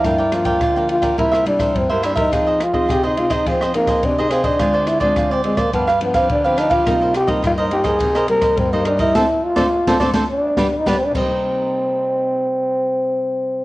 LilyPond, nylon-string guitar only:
\new Staff \with { instrumentName = "Nylon-string guitar" } { \time 4/4 \key c \minor \tempo 4 = 105 << { <f bes d'>16 r16 <f bes d'>8. <f bes d'>8. <g bes e'>8 <g bes e'>8. <g bes e'>8. | <c' ees' aes'>8 r16 <c' ees' aes'>8. <c' ees' aes'>8 <c' ees' aes'>16 r16 <c' ees' aes'>8. <c' ees' aes'>8. | <aes c' f'>8. <aes c' f'>8. <aes c' f'>16 r16 <f b d'>16 r16 <f b d'>8 r16 <f b d'>8. | <g bes ees'>8 r16 <g bes ees'>8. <g bes ees'>8. r16 <g bes ees'>8. <g bes ees'>8. |
<a c' d'>16 r8 <a c' d'>16 r16 <a c' d'>16 <a c' d'>16 <a c' d'>16 r8 <g b d'>16 r16 <g b d'>16 r16 <c g bes ees'>8~ | <c g bes ees'>1 | } \\ { g,4 d4 c4 g,4 | f4 c4 f4 c4 | d4 d4 g,4 d4 | c4 g,4 c4 g,4 |
r1 | r1 | } >> }